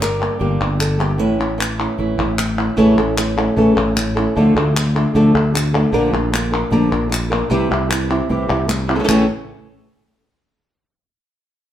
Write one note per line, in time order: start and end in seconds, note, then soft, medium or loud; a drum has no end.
0.00 0.28 G1 loud
0.00 0.98 G2 medium
0.00 1.17 G3 medium
0.00 0.41 A#4 loud
0.00 muted nylon-string guitar stroke medium
0.00 clap medium
0.19 0.39 A#3 soft
0.19 0.40 D4 soft
0.19 0.39 G4 soft
0.19 clap medium
0.39 0.57 G1 medium
0.39 0.59 D3 medium
0.39 0.59 G3 medium
0.39 0.59 A#3 medium
0.39 0.60 D4 medium
0.39 0.59 G4 medium
0.39 0.80 G4 loud
0.60 1.20 G1 loud
0.60 0.78 A#3 soft
0.60 0.79 D4 soft
0.60 0.78 G4 soft
0.60 clap medium
0.79 1.00 A4 loud
0.79 muted nylon-string guitar stroke medium
0.79 clap medium
0.99 1.18 G2 medium
0.99 1.18 A#3 soft
0.99 1.19 D4 soft
0.99 1.18 G4 medium
0.99 1.19 G4 medium
0.99 clap medium
1.18 1.86 A1 loud
1.18 2.75 A2 medium
1.18 1.38 E3 medium
1.18 1.57 E3 soft
1.18 1.38 A3 medium
1.18 1.38 C#4 medium
1.18 2.75 C#4 soft
1.18 1.37 E4 medium
1.18 2.76 E4 soft
1.18 2.77 A4 medium
1.39 1.57 A3 soft
1.39 1.58 C#4 soft
1.39 1.58 E4 soft
1.58 2.75 E3 medium
1.58 muted nylon-string guitar stroke medium
1.58 clap medium
1.79 1.97 A3 soft
1.79 1.98 C#4 soft
1.79 1.98 E4 soft
1.79 clap medium
1.98 2.15 A1 medium
1.98 2.17 E3 medium
1.98 2.17 A3 medium
1.98 2.17 C#4 medium
1.98 2.16 E4 medium
2.17 2.68 A1 loud
2.17 2.37 A3 soft
2.17 2.37 C#4 soft
2.17 2.37 E4 soft
2.17 clap medium
2.38 muted nylon-string guitar stroke medium
2.38 clap medium
2.57 2.76 A3 soft
2.57 2.77 C#4 soft
2.57 2.76 E4 soft
2.76 2.94 A1 loud
2.76 2.96 C#3 medium
2.76 2.96 E3 loud
2.76 3.16 E3 medium
2.76 2.96 A3 loud
2.76 3.16 A3 medium
2.76 2.97 C#4 medium
2.76 3.17 C#4 medium
2.76 3.17 E4 medium
2.76 2.97 A4 medium
2.98 3.47 A1 medium
2.98 3.16 A3 medium
2.98 3.16 C#4 medium
2.98 3.17 A4 medium
2.98 clap medium
3.17 3.36 E3 medium
3.17 3.36 A3 medium
3.17 3.36 C#4 medium
3.17 3.36 E4 medium
3.17 muted nylon-string guitar stroke medium
3.17 clap medium
3.37 3.56 A3 soft
3.37 3.56 A3 medium
3.37 3.56 C#4 soft
3.37 3.56 C#4 medium
3.37 3.56 E4 medium
3.37 3.56 A4 medium
3.37 clap medium
3.57 3.73 A1 medium
3.57 3.75 C#3 medium
3.57 3.75 E3 loud
3.57 3.75 A3 medium
3.57 3.75 C#4 medium
3.57 3.74 A4 medium
3.57 muted nylon-string guitar stroke medium
3.75 4.26 A1 medium
3.75 3.95 A3 medium
3.75 3.95 C#4 medium
3.75 3.94 A4 medium
3.75 clap medium
3.95 4.16 A3 soft
3.95 4.16 C#4 soft
3.95 4.15 E4 medium
3.95 muted nylon-string guitar stroke medium
3.95 clap medium
4.15 4.35 A3 medium
4.15 4.36 A3 soft
4.15 4.35 C#4 medium
4.15 4.36 C#4 soft
4.15 4.35 E4 soft
4.15 4.35 A4 medium
4.36 4.53 D2 loud
4.36 4.55 D3 medium
4.36 4.74 D3 medium
4.36 4.55 F3 medium
4.36 4.55 A3 medium
4.36 4.75 A3 medium
4.36 4.55 D4 loud
4.36 4.75 D4 medium
4.36 4.75 F4 medium
4.36 4.55 A4 medium
4.55 5.05 D2 loud
4.55 4.75 A3 soft
4.55 4.75 D4 medium
4.55 4.75 A4 medium
4.55 clap medium
4.76 4.94 D3 medium
4.76 4.95 A3 soft
4.76 4.95 D4 medium
4.76 4.95 F4 medium
4.76 muted nylon-string guitar stroke medium
4.76 clap medium
4.95 5.14 A3 medium
4.95 5.14 A3 soft
4.95 5.14 D4 medium
4.95 5.14 D4 soft
4.95 5.15 F4 soft
4.95 5.14 A4 medium
4.95 clap medium
5.14 5.31 D2 medium
5.14 5.33 D3 medium
5.14 5.34 F3 medium
5.14 5.34 A3 loud
5.14 5.34 D4 medium
5.14 5.33 A4 loud
5.14 muted nylon-string guitar stroke medium
5.35 5.84 D2 loud
5.35 5.53 A3 medium
5.35 5.53 D4 medium
5.35 5.53 A4 medium
5.35 clap medium
5.54 5.74 A3 soft
5.54 5.73 D4 soft
5.54 5.73 F4 soft
5.54 muted nylon-string guitar stroke medium
5.54 clap medium
5.73 5.93 A3 medium
5.73 5.94 A3 soft
5.73 5.93 D4 medium
5.73 5.93 D4 soft
5.73 5.93 F4 medium
5.73 5.92 A4 medium
5.92 6.10 A#1 loud
5.92 6.12 D3 medium
5.92 6.12 F3 loud
5.92 6.12 A#3 medium
5.92 6.13 A#3 medium
5.92 6.12 D4 loud
5.92 6.12 D4 medium
5.92 6.11 F4 medium
5.92 6.11 A#4 loud
6.12 6.63 A#1 medium
6.12 6.32 A#3 soft
6.12 6.32 D4 soft
6.12 6.32 D4 medium
6.12 6.32 F4 soft
6.12 6.32 A#4 medium
6.12 clap medium
6.32 6.51 D3 soft
6.32 6.51 A#3 medium
6.32 6.51 D4 medium
6.32 6.50 F4 medium
6.32 muted nylon-string guitar stroke medium
6.32 clap medium
6.51 6.69 A#3 soft
6.51 6.71 A#3 soft
6.51 6.71 D4 medium
6.51 6.70 D4 soft
6.51 6.70 F4 medium
6.51 6.71 A#4 medium
6.51 clap medium
6.70 6.88 A#1 medium
6.70 6.91 D3 medium
6.70 6.91 F3 loud
6.70 6.91 A#3 medium
6.70 6.91 D4 medium
6.70 6.90 A#4 medium
6.70 muted nylon-string guitar stroke medium
6.91 7.42 A#1 medium
6.91 7.09 A#3 medium
6.91 7.09 D4 medium
6.91 7.09 A#4 medium
6.91 clap medium
7.09 muted nylon-string guitar stroke medium
7.09 clap medium
7.30 7.50 A#3 soft
7.30 7.51 A#3 medium
7.30 7.50 D4 medium
7.30 7.50 D4 soft
7.30 7.50 F4 medium
7.30 7.50 A#4 medium
7.30 clap medium
7.50 7.68 C2 loud
7.50 7.69 C3 medium
7.50 7.69 E3 medium
7.50 7.70 E3 medium
7.50 7.69 G3 medium
7.50 7.70 C4 medium
7.50 7.69 C4 medium
7.50 7.70 E4 loud
7.50 7.68 E4 medium
7.50 7.70 G4 loud
7.69 8.20 C2 loud
7.69 7.89 G3 soft
7.69 7.89 C4 soft
7.69 7.89 C4 medium
7.69 7.89 E4 soft
7.69 7.89 E4 medium
7.69 7.89 G4 medium
7.69 clap medium
7.89 8.09 E3 medium
7.89 8.09 G3 medium
7.89 8.08 C4 medium
7.89 8.08 E4 medium
7.89 muted nylon-string guitar stroke medium
7.89 clap loud
8.09 8.28 G3 soft
8.09 8.29 C4 soft
8.09 8.29 C4 medium
8.09 8.28 E4 soft
8.09 8.29 E4 medium
8.09 8.29 G4 medium
8.09 clap medium
8.29 8.46 C2 medium
8.29 8.48 C3 medium
8.29 8.49 E3 medium
8.29 8.49 C4 medium
8.29 8.48 E4 medium
8.29 8.47 G4 medium
8.29 muted nylon-string guitar stroke medium
8.48 8.99 C2 loud
8.48 8.67 C4 medium
8.48 8.67 E4 medium
8.48 8.67 G4 medium
8.48 clap medium
8.68 muted nylon-string guitar stroke medium
8.68 clap medium
8.87 8.99 G3 soft
8.87 8.99 C4 soft
8.87 8.95 C4 medium
8.87 8.99 E4 medium
8.87 8.96 E4 medium
8.87 8.96 G4 medium
8.95 8.98 C#3 medium
8.95 8.98 E3 medium
8.95 9.02 E3 soft
8.95 8.99 A3 medium
8.95 8.99 C#4 medium
8.95 8.99 A4 medium
8.99 9.02 C#3 medium
8.99 9.03 E3 medium
8.99 9.02 A3 soft
8.99 9.03 A3 medium
8.99 9.03 C#4 soft
8.99 9.03 C#4 medium
8.99 9.03 E4 medium
8.99 9.04 A4 medium
9.03 9.07 C#3 medium
9.03 9.07 E3 medium
9.03 9.07 A3 medium
9.03 9.08 A3 medium
9.03 9.08 C#4 medium
9.03 9.08 E4 medium
9.03 9.08 A4 loud
9.08 9.27 A1 loud
9.08 9.24 A2 medium
9.08 9.24 C#3 medium
9.08 9.24 E3 medium
9.08 9.24 A3 medium
9.08 9.24 A3 loud
9.08 9.24 C#4 medium
9.08 9.24 E4 medium
9.08 9.25 A4 loud
9.08 clap loud